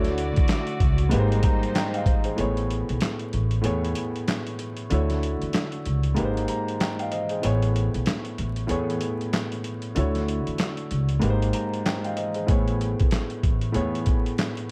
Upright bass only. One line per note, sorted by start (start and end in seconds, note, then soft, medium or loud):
0.00 0.30 D2 loud
0.38 0.48 E2 medium
0.81 1.08 C#2 loud
1.13 1.40 G#1 loud
2.39 2.83 A1 loud
2.90 3.00 B1 medium
3.34 3.61 A1 medium
3.65 3.92 E2 medium
4.92 5.35 D2 loud
5.42 5.53 E2 medium
5.86 6.13 C#2 medium
6.18 6.45 G#1 loud
7.44 7.88 A1 loud
7.95 8.05 B1 medium
8.39 8.66 A1 medium
8.71 8.98 E2 medium
9.97 10.41 D2 loud
10.47 10.58 E2 medium
10.91 11.19 C#2 medium
11.23 11.50 G#1 loud
12.49 12.93 A1 loud
13.01 13.11 B1 medium
13.44 13.71 A1 medium
13.76 14.03 E2 medium